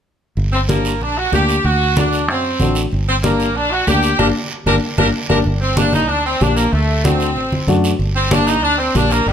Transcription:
0.37 G1, high conga, long guiro
0.52 C4
0.68 A#3 D4 G4, high conga, short guiro
0.85 short guiro
1.01 A#1 D4, high conga, long guiro
1.17 F#4
1.32 D2 A#3 D4 G4, high conga, short guiro
1.49 short guiro
1.64 D2 F#4, high conga, long guiro
1.96 A3 D4 F#4, high conga, short guiro
2.13 short guiro
2.28 F#2 C4, high conga, long guiro
2.60 A1 A3 D4 F#4, high conga, short guiro
2.75 short guiro
2.91 G1, high conga, long guiro
3.08 C4
3.23 A#3 D4 G4, high conga, short guiro
3.40 short guiro
3.55 A#1 D4, high conga, long guiro
3.71 F#4
3.87 D2 A#3 D4 G4, high conga, short guiro
4.03 short guiro
4.19 G1 A#3 D4 G4 A#4, high conga, long guiro
4.66 G1 A#3 D4 G4 A#4, high conga, long guiro
4.98 G1 A#3 D4 G4 A#4, high conga, long guiro
5.30 G1 A#3 D4 G4 A#4, high conga
5.45 G1, high conga, long guiro
5.61 C4
5.77 A#3 D4 G4, high conga, short guiro
5.93 D#4, high conga, short guiro
6.08 D2 D4, high conga, long guiro
6.25 C4
6.41 A#1 A#3 D4 G4, high conga, short guiro
6.56 A#3, short guiro
6.72 D2 A3, high conga, long guiro
7.04 A3 C4 D4 F#4, high conga, short guiro
7.20 short guiro
7.36 A1, high conga, long guiro
7.52 high conga
7.67 F#2 A3 D4 F#4, high conga, short guiro
7.84 short guiro
7.99 G1, high conga, long guiro
8.16 C4
8.31 A#3 D4 G4, high conga, short guiro
8.47 D#4, short guiro
8.63 D2 D4, high conga, long guiro
8.78 C4
8.95 A#1 A#3 D4 G4, high conga, short guiro
9.11 A#3, short guiro
9.26 G1 G3, high conga, long guiro

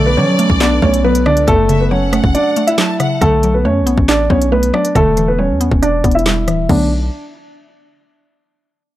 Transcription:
Already playing: B1 B2 D3 B3 A4 B4 D5
0.06 B3 B4
0.17 F#3 C#4 C#5
0.39 A3, closed hi-hat
0.50 B1, kick
0.61 B3 D4 D5, snare, clap, closed hi-hat
0.82 B1 A3 C#4 C#5, kick
0.94 closed hi-hat
1.04 F#3 B3 B4
1.15 closed hi-hat
1.26 C#2 D3 D4 D5, cross-stick
1.37 closed hi-hat
1.47 F#1 F#2 F#3 A3 A4, kick, closed hi-hat
1.69 C#3 E5, closed hi-hat
1.80 B3 B4
1.91 F#3 C#4 C#5 F#5
2.12 A3, cross-stick, closed hi-hat
2.24 F#1, kick
2.35 D4 D5, closed hi-hat
2.56 A3, closed hi-hat
2.67 E4 E5, closed hi-hat
2.78 F#3 A5, snare, clap
3.00 C#3 F#5, cross-stick, closed hi-hat
3.21 B1 D3 A3 A4, kick, closed hi-hat
3.43 F#3, closed hi-hat
3.54 B3 B4
3.65 F#2 A3 C#4 C#5
3.81 B1
3.86 B3, closed hi-hat
3.98 A1, kick
4.08 D4 D5, snare, clap, closed hi-hat
4.30 B1 B3 C#4 C#5, kick
4.42 closed hi-hat
4.52 A3 B3 B4
4.63 closed hi-hat
4.73 F#3 D4 D5, cross-stick
4.85 closed hi-hat
4.95 E1 D3 A3 A4, kick, closed hi-hat
5.17 E3, closed hi-hat
5.28 B3 B4
5.39 G3 C#4 C#5
5.50 E2
5.60 B3, closed hi-hat
5.72 E1, kick
5.82 D4 D5, closed hi-hat
6.04 E1 B3, kick, closed hi-hat
6.11 E5, closed hi-hat
6.16 E4, closed hi-hat
6.26 G3, snare, clap
6.47 D1 E3, cross-stick, closed hi-hat
6.58 E1
6.69 B1 D3 F#3 A3 B3 D4, kick, crash

